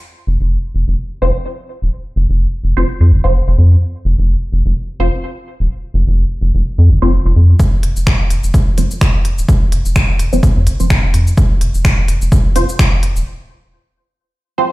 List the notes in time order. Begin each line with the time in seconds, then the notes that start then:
0.27 F1
0.41 F1
0.75 F1
0.88 F1
1.22 F1 F3 C4 C5
1.82 D#1
2.16 F1
2.30 F1
2.64 F1
2.77 F1 F3 C4 C5
3.00 F2
3.11 F1
3.24 F1 F3 C4 C5
3.48 F1
3.58 F2
4.05 F1
4.19 F1
4.53 F1
4.66 F1
5.00 F1 F3 C4 C5
5.60 D#1
5.94 F1
6.08 F1
6.41 F1
6.55 F1
6.78 F2
6.89 F1
7.02 F1 F3 C4 C5
7.26 F1
7.36 F2
7.60 kick, shaker
7.83 F1, open hi-hat
7.96 F1, shaker
8.07 finger snap, kick, shaker
8.30 F1, open hi-hat, shaker
8.44 F1, shaker
8.54 kick, shaker
8.78 F1 F3 C4 C5, open hi-hat, shaker
8.91 shaker
9.01 finger snap, kick, shaker
9.25 open hi-hat
9.38 D#1, shaker
9.49 kick, shaker
9.72 F1, open hi-hat
9.85 F1, shaker
9.96 finger snap, kick, shaker
10.19 F1, open hi-hat, shaker
10.33 F1 F3 C4 C5, shaker
10.43 kick, shaker
10.56 F2
10.67 F1, open hi-hat, shaker
10.80 F1 F3 C4 C5, shaker
10.90 finger snap, kick, shaker
11.04 F1
11.14 F2, open hi-hat
11.27 shaker
11.38 kick, shaker
11.61 F1, open hi-hat
11.74 F1, shaker
11.85 finger snap, kick, shaker
12.08 F1, open hi-hat, shaker
12.22 F1, shaker
12.32 kick, shaker
12.56 F1 F3 C4 C5, open hi-hat, shaker
12.69 shaker
12.79 finger snap, kick, shaker
13.03 open hi-hat
13.16 D#1, shaker
14.58 F3 C4 C5